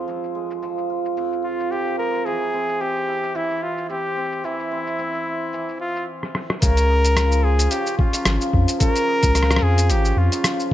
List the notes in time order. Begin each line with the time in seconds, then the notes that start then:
Already playing: F3 G#3 D#4 F4
0.08 F2, cabasa
0.24 cabasa
0.35 G#3
0.50 cabasa
0.62 F3, cabasa
0.78 cabasa
0.90 F4
1.05 cabasa
1.17 F2, cabasa
1.32 cabasa
1.44 F4
1.60 cabasa
1.71 F3 G4, cabasa
1.87 cabasa
1.98 G#3 A#4
2.14 cabasa
2.25 E3 G#4, cabasa
2.53 C4, cabasa
2.69 cabasa
2.80 C4 G4, cabasa
2.96 cabasa
3.08 E4
3.23 cabasa
3.35 E3 E4, cabasa
3.50 cabasa
3.63 F4
3.78 cabasa
3.89 C4 G4, cabasa
4.05 cabasa
4.11 cabasa
4.17 C4, cabasa
4.25 cabasa
4.32 cabasa
4.44 E3 E4, cabasa
4.60 cabasa
4.71 C4
4.87 cabasa
4.99 C4, cabasa
5.14 cabasa
5.26 E4
5.53 E3, cabasa
5.69 cabasa
5.80 F4
5.96 cabasa
6.23 cross-stick
6.35 cross-stick
6.50 cross-stick
6.62 C#2 C#3 A#4, kick, closed hi-hat, cabasa
6.77 closed hi-hat, cabasa
6.89 D#4
7.05 closed hi-hat, cabasa
7.17 F3, cross-stick, closed hi-hat, cabasa
7.32 cabasa
7.44 F4 G#4
7.59 closed hi-hat, cabasa
7.71 C#3 G4, closed hi-hat, cabasa
7.87 cabasa
7.98 C#4 F4, kick
8.13 D#4, closed hi-hat, cabasa
8.25 G#1 F3, cross-stick, closed hi-hat, cabasa
8.41 cabasa
8.53 F2, kick
8.68 closed hi-hat, cabasa
8.80 C#3 A#4, kick, closed hi-hat, cabasa
8.96 closed hi-hat, cabasa
9.08 D#4
9.23 C#2, kick, closed hi-hat, cabasa
9.35 F3, cross-stick, closed hi-hat, cabasa
9.43 cross-stick
9.51 cross-stick, cabasa
9.56 cross-stick
9.62 F2 F4 G#4
9.78 closed hi-hat, cabasa
9.90 G#1 C#3 G4, closed hi-hat, cabasa
10.05 cabasa
10.17 F2 C#4 F4
10.32 D#4, closed hi-hat, cabasa
10.44 F3, cross-stick, closed hi-hat, cabasa
10.60 cabasa